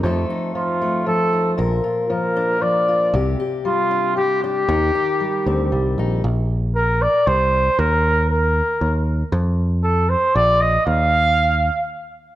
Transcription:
<<
  \new Staff \with { instrumentName = "Trumpet" } { \time 3/4 \key bes \major \tempo 4 = 116 r4 f'4 a'4 | r4 bes'4 d''4 | r4 f'4 g'8 g'8~ | g'2~ g'8 r8 |
r4 bes'8 d''8 c''4 | bes'4 bes'4. r8 | r4 a'8 c''8 d''8 ees''8 | f''2 r4 | }
  \new Staff \with { instrumentName = "Steel-string acoustic guitar" } { \time 3/4 \key bes \major << { <f a ees' a'>8 ees'4 a4 ees'8 | bes'8 f'4 d'4 f'8 | g'8 g'4 d'4 d'8 | ees'8 ees'4 c'4 ees'8 |
r2. | r2. | r2. | r2. | } \\ { f,4 f4 f4 | bes,4 f4 f4 | c4 g4 g4 | ees4 g4 g4 |
r2. | r2. | r2. | r2. | } >> }
  \new Staff \with { instrumentName = "Picked electric bass" } { \clef bass \time 3/4 \key bes \major f,8 r2 r8 | bes,,8 r2 r8 | c,8 r2 r8 | ees,8 r4 d,8 c,8 bes,,8 |
bes,,2 c,4 | ees,2 ees,4 | f,2 bes,,4 | ees,2 r4 | }
>>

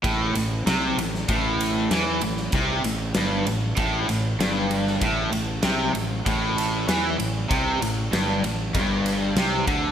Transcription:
<<
  \new Staff \with { instrumentName = "Overdriven electric guitar" } { \clef bass \time 4/4 \key a \minor \tempo 4 = 97 a,8 a,8 c8 a,8 a,4 e8 a,8 | c8 a,8 g,8 a,8 a,8 a,8 g,4 | a,8 a,8 c8 a,8 a,4 e8 a,8 | c8 a,8 g,8 a,8 g,4 c8 d8 | }
  \new Staff \with { instrumentName = "Fingered electric bass" } { \clef bass \time 4/4 \key a \minor a,,8 a,,8 c,8 a,,8 a,,4 e,8 a,,8 | c,8 a,,8 g,,8 a,,8 a,,8 a,,8 g,,4 | a,,8 a,,8 c,8 a,,8 a,,4 e,8 a,,8 | c,8 a,,8 g,,8 a,,8 g,,4 c,8 d,8 | }
  \new DrumStaff \with { instrumentName = "Drums" } \drummode { \time 4/4 <bd cymr>8 cymr8 <cymr sn>8 cymr16 sn16 <bd cymr>8 cymr8 <cymr sn>8 cymr16 sn16 | <bd cymr>8 cymr8 <cymr sn>8 cymr8 <bd cymr>8 cymr8 <cymr sn>8 cymr16 sn16 | <bd cymr>8 cymr8 <cymr sn>8 cymr8 <bd cymr>8 cymr8 <cymr sn>8 cymr8 | <bd cymr>8 cymr8 <cymr sn>8 cymr8 <bd cymr>8 cymr8 <cymr sn>8 <bd cymr>8 | }
>>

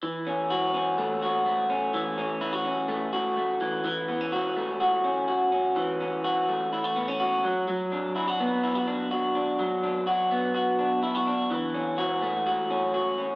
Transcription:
\new Staff \with { instrumentName = "Clean electric guitar" } { \time 4/4 \key a \major \tempo 4 = 125 e8 cis'8 fis'8 cis'8 a8 fis'8 a8 cis'8 | e8 cis'8 e'16 fis'16 cis'8 a8 fis'8 a8 e8 | e8 b16 cis'16 fis'8 a8 fis'8 cis'8 fis'8 cis'8 | e8 cis'8 fis'8 a8 e'16 fis'16 b16 cis'16 fis'8 fis8 |
fis8 d'8 e'16 fis'16 b8 e'16 fis'16 d'8 fis'8 d'8 | fis8 d'8 fis'8 b8 fis'8 d'8 e'16 fis'16 d'8 | e8 cis'8 fis'8 a8 fis'8 cis'8 fis'8 cis'8 | }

